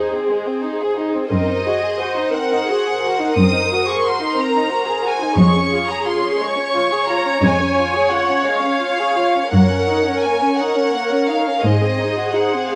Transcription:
0.00 0.11 D#4 soft
0.00 1.31 G#4 soft
0.00 1.27 C5 soft
0.11 0.28 C4 soft
0.28 0.46 G#3 soft
0.46 0.63 C4 soft
0.63 0.80 D#4 soft
0.80 0.97 G#4 soft
0.98 1.14 D#4 soft
1.14 1.29 C4 soft
1.30 2.15 F#2 soft
1.30 1.46 C4 soft
1.30 1.65 A#4 soft
1.30 5.34 C5 soft
1.30 2.30 D#5 medium
1.48 1.65 D#4 soft
1.65 1.83 F#4 soft
1.65 1.99 G#4 soft
1.82 1.99 G#4 soft
1.99 2.17 F#4 soft
1.99 2.34 C5 soft
2.16 2.33 D#4 soft
2.33 2.51 C4 soft
2.33 2.68 A#4 soft
2.33 3.37 F#5 medium
2.50 2.68 D#4 soft
2.68 2.86 F#4 soft
2.68 3.03 G#4 soft
2.86 3.03 G#4 soft
3.03 3.20 F#4 soft
3.03 5.34 A#4 soft
3.20 3.37 D#4 soft
3.37 4.18 F#2 soft
3.37 3.53 C4 soft
3.37 3.87 D#6 medium
3.54 3.71 D#4 soft
3.71 3.88 F#4 soft
3.88 4.05 G#4 soft
3.88 4.04 C#6 soft
4.05 4.21 F#4 soft
4.05 4.39 C6 medium
4.21 4.37 D#4 soft
4.36 4.53 C4 soft
4.36 5.04 A#5 medium
4.54 4.70 D#4 soft
4.70 4.87 F#4 soft
4.87 5.04 G#4 soft
5.04 5.21 F#4 soft
5.04 5.39 G#5 medium
5.20 5.38 D#4 soft
5.37 6.21 F2 soft
5.37 5.54 G#3 soft
5.37 6.38 G#4 soft
5.37 9.52 C#5 soft
5.37 5.89 C#6 medium
5.57 5.73 C#4 soft
5.73 5.90 F4 soft
5.90 6.07 G#4 soft
5.90 6.07 A#5 medium
6.07 6.24 F4 soft
6.07 6.41 C6 soft
6.24 6.40 C#4 soft
6.41 6.57 G#3 soft
6.41 9.52 C#5 medium
6.41 7.09 C#6 medium
6.57 6.74 C#4 soft
6.74 6.91 F4 soft
6.91 7.08 G#4 soft
7.07 7.25 F4 soft
7.07 7.42 A#5 medium
7.25 7.42 C#4 soft
7.41 8.25 F2 soft
7.41 7.57 G#3 soft
7.41 8.10 G#5 soft
7.59 7.76 C#4 soft
7.77 7.94 F4 soft
7.93 8.10 G#4 soft
8.09 8.27 F4 soft
8.09 8.44 F#5 soft
8.27 8.44 C#4 soft
8.44 8.62 G#3 soft
8.44 9.52 F5 medium
8.62 8.80 C#4 soft
8.81 8.98 F4 soft
8.99 9.17 G#4 soft
9.17 9.35 F4 soft
9.35 9.53 C#4 soft
9.52 10.39 F#2 soft
9.52 9.69 A#3 soft
9.52 10.56 A#4 soft
9.52 11.61 C#5 soft
9.52 10.22 F#5 medium
9.71 9.88 C#4 soft
9.88 10.06 D#4 soft
10.06 10.24 C#4 soft
10.22 10.42 A#3 soft
10.22 10.58 G#5 soft
10.42 10.59 C#4 soft
10.58 10.77 D#4 soft
10.58 11.62 A#4 soft
10.58 11.28 F#5 medium
10.76 10.94 C#4 soft
10.93 11.11 A#3 soft
11.11 11.29 C#4 soft
11.29 11.47 D#4 soft
11.29 11.64 F5 soft
11.46 11.64 C#4 soft
11.64 12.51 G#2 soft
11.64 11.81 G#3 soft
11.64 12.75 G#4 soft
11.64 12.75 C5 soft
11.64 12.35 D#5 medium
11.82 12.00 C4 soft
12.00 12.18 D#4 soft
12.18 12.35 F#4 soft
12.35 12.53 D#4 soft
12.35 12.71 F#5 soft
12.54 12.72 C4 soft
12.70 12.75 G#3 soft
12.70 12.75 F5 soft

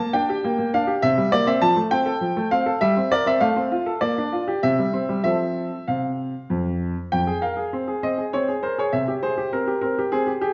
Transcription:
0.00 0.14 A#3 soft
0.00 0.10 A5 medium
0.13 0.29 D4 soft
0.13 0.69 G5 medium
0.30 0.44 G4 soft
0.45 0.57 A#3 soft
0.59 0.74 A#3 soft
0.74 0.89 D4 soft
0.74 1.03 F5 medium
0.87 1.02 G4 soft
1.02 1.17 C3 medium
1.02 1.32 E5 medium
1.18 1.33 G3 soft
1.32 1.48 A#3 soft
1.32 1.47 D5 medium
1.47 1.62 C4 medium
1.47 1.62 E5 medium
1.62 1.76 F3 medium
1.62 1.80 A5 medium
1.76 1.92 A3 soft
1.91 2.07 C4 soft
1.91 2.47 G5 medium
2.06 2.22 A4 soft
2.21 2.36 F3 soft
2.37 2.52 A3 soft
2.51 2.67 C4 soft
2.51 2.78 F5 medium
2.66 2.81 A4 soft
2.81 2.96 G3 medium
2.81 3.11 E5 medium
2.97 3.13 C4 soft
3.12 3.28 A#4 soft
3.12 3.27 D5 medium
3.26 3.42 C4 soft
3.26 3.42 E5 medium
3.40 3.56 A3 medium
3.40 4.01 F5 medium
3.56 3.72 C4 soft
3.72 3.88 F4 soft
3.86 4.02 A4 soft
4.01 4.17 A#3 medium
4.01 4.59 D5 medium
4.18 4.34 D4 soft
4.33 4.49 F4 soft
4.48 4.63 G4 soft
4.63 4.78 C3 medium
4.63 5.22 E5 medium
4.79 4.95 G3 soft
4.93 5.10 C4 soft
5.09 5.25 G3 soft
5.24 5.68 F3 soft
5.24 5.75 C4 soft
5.24 5.75 A4 soft
5.24 5.87 E5 medium
5.88 6.31 C3 soft
5.88 6.77 F5 soft
6.50 6.93 F2 soft
7.12 7.27 F2 soft
7.12 7.43 G5 medium
7.27 7.43 G#4 soft
7.42 7.57 A#4 soft
7.42 8.03 F5 soft
7.57 7.73 G#4 soft
7.73 7.89 C4 soft
7.88 8.04 G#4 soft
8.03 8.19 C4 soft
8.03 8.21 D#5 medium
8.18 8.34 G#4 soft
8.33 8.49 C4 soft
8.33 8.51 C#5 medium
8.48 8.64 G#4 soft
8.63 8.78 A#4 soft
8.63 8.78 C5 medium
8.78 8.93 G#4 soft
8.78 8.94 C#5 medium
8.93 9.08 C3 soft
8.93 9.11 E5 medium
9.08 9.24 G4 soft
9.23 9.38 G#4 soft
9.23 9.53 C5 medium
9.38 9.54 G4 soft
9.53 9.69 C4 soft
9.53 9.80 A#4 medium
9.67 9.84 G4 soft
9.81 9.99 C4 soft
9.81 10.00 A#4 soft
9.99 10.14 G4 soft
10.12 10.29 C4 soft
10.12 10.30 G#4 medium
10.27 10.40 G4 soft
10.41 10.53 G4 medium
10.41 10.53 G#4 soft

